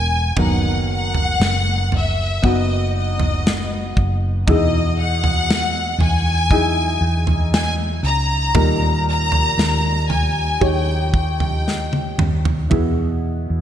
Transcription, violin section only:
Already playing: G#5
0.40 F#5
0.92 F#5
1.96 E5
2.47 D#5
2.98 D#5
4.49 D#5
5.00 F#5
6.02 G#5
7.53 G#5
8.05 A#5
9.09 A#5
10.12 G#5
10.65 G5
11.16 G5

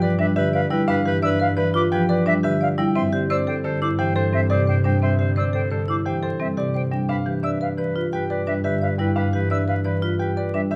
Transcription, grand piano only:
0.02 D5
0.36 E5
0.70 G5
0.88 F5
1.22 E5
1.57 B4
1.92 G5
2.09 D5
2.44 E5
2.79 G5
2.95 E5
3.31 D5
3.65 A4
3.99 G5
4.16 C5
4.50 D5
4.85 G5
5.03 E5
5.37 D5
5.71 A4
6.06 G5
6.23 C5
6.57 D5
6.91 G5
7.09 F5
7.43 E5
7.78 B4
8.13 G5
8.30 D5
8.65 E5
8.98 G5
9.16 F5
9.51 E5
9.85 B4
10.19 G5
10.37 D5
10.71 E5

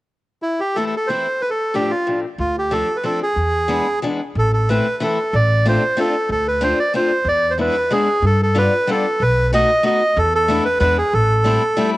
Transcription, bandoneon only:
0.42 E4
0.60 G4
0.75 A4
0.86 A4
0.97 A4
1.07 C5
1.41 B4
1.50 A4
1.75 G4
1.90 F4
2.40 F4
2.59 G4
2.72 A4
2.97 B4
3.05 A4
3.23 G#4
4.39 A4
4.53 A4
4.70 B4
5.03 A4
5.35 D5
5.68 C5
6.00 A4
6.31 A4
6.48 B4
6.63 C5
6.79 D5
6.96 C5
7.28 D5
7.50 C5
7.61 B4
7.92 G#4
8.26 A4
8.43 A4
8.58 B4
8.91 A4
9.22 B4
9.54 D#5
9.86 D#5
10.18 A4
10.35 A4
10.65 B4
10.80 B4
10.98 G#4
11.14 A4

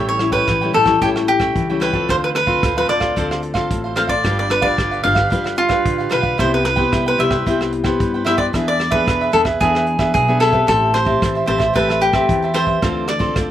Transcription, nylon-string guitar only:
Already playing: A2 G3 C#4 E4
0.20 G3 C#4 E4
0.48 E3
0.63 G3 C#4 E4
0.86 G3 C#4 E4
1.01 A2 G3 C#4 E4
1.40 G3 C#4 E4
1.56 E3
1.70 G3 C#4 E4
1.94 C4 F4 A4
2.10 D3
2.48 C4 F4 A4
2.64 A2
2.77 C4 F4 A4
3.16 D3 C4 F4 A4
3.55 C4 F4 A4
3.71 A2
3.97 C4 F4 A4
4.25 G3 D4 F4 B4
4.63 D4 F4 B4
4.80 D3
5.04 D4 F4 B4
5.32 G3 D4 F4 B4
5.70 D4 F4 B4
5.86 D3
6.12 D4 F4 B4
6.40 C3 B3 E4 G4
6.77 B3 E4 G4
6.93 G3
7.19 B3 E4 G4
7.47 C3 B3 E4 G4
7.85 B3 E4 G4
8.01 G3
8.27 B3 E4 G4
8.54 E3 B3 D4 G#4
8.92 B3 D4 G#4
9.08 B2
9.33 B3 D4 G#4
9.61 E3 B3 D4 G#4
9.99 B3 D4 G#4
10.14 B2
10.29 B3 D4 G#4
10.52 C4 G4 B4
10.68 A3
11.06 C4 G4
11.22 E3
11.48 C4 G4 B4
11.75 A3 C4 G4 B4
12.13 C4 G4 B4
12.28 E3
12.54 C4 G4 B4
12.82 D3 C4 F4 A4
13.20 C4 F4 A4
13.36 A2

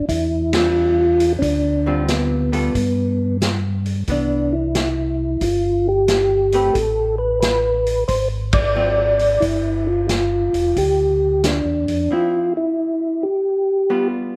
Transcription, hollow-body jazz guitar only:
0.54 G3 C4 D4
1.86 D3 G3 C4 F4
2.52 G3 B3 F4 A4
4.08 E3 B3 D4
6.53 A3 C4 G4 B4
8.75 F#3 C4 F4
12.11 F3 C4 E4
13.90 G3 B3 F4

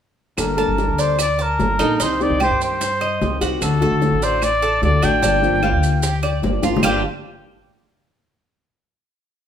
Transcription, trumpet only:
0.39 A#4
1.00 C5
1.21 D5
1.42 A#4
2.02 C5
2.22 D5
2.42 C5
2.63 C5
3.63 A4
4.23 C5
4.44 D5
4.83 D5
5.04 G5
6.83 G5

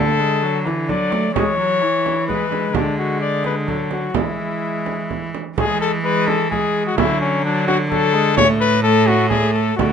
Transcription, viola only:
Already playing: A3
0.19 G#3
0.43 F#3
0.65 E3
0.89 D3
1.11 A3
1.35 G#3
1.58 F#3
1.82 E3
2.28 G#3
2.51 G#3
3.68 F#3
4.15 G#3
5.57 G#3
6.04 G#3
6.51 G#3
6.97 F#3
7.44 F#3
7.90 F#3
8.13 G#3
8.37 A3
8.84 A3
9.78 A3

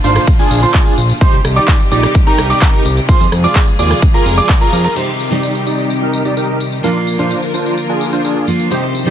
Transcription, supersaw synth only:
0.04 D4 F4 C5
0.39 D4 F4 G#4
0.63 D4 F4 C5
0.74 D4 F4 G#4
1.21 D#4 G4 C5
1.56 D#4 G4 D5
1.92 D#4 G4 D5
2.27 D#4 G4 A#4
2.50 D#4 G4 D5
3.09 F4 G#4 C5
3.44 F4 G#4 D5
3.79 F4 G#4 D5
4.14 F4 G#4 A#4
4.38 F4 G#4 D5
4.61 F4 G#4 A#4
4.73 F4 G#4 A#4
4.84 F4 G#4 A#4
4.96 D#4 G4 C5
5.31 D#4 G4 D5
5.67 D#4 G4 D5
6.02 D#4 G4 A#4
6.25 D#4 G4 D5
6.37 D#4 G4 A#4
6.84 D4 F4 A#4
7.19 D4 F4 C5
7.54 D4 F4 C5
7.89 D4 F4 G#4
8.13 D4 F4 C5
8.24 D4 F4 G#4
8.71 D#4 G4 C5
9.06 D#4 G4 D5

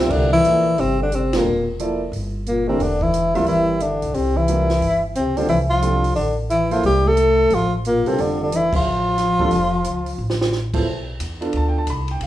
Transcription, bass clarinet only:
0.00 C3
0.10 D3
0.32 E3
0.78 C3
0.99 D3
1.12 C3
1.33 A#2
2.47 A#2
2.68 C3
2.79 D3
3.02 E3
3.35 F3
3.48 E3
3.81 D3
4.15 C3
4.36 E3
5.15 C3
5.36 D3
5.49 E3
5.70 F3
6.17 D3
6.51 E3
6.73 F3
6.84 G3
7.05 A3
7.51 F3
7.84 A#2
8.06 C3
8.18 D3
8.41 D3
8.52 E3
8.73 F3

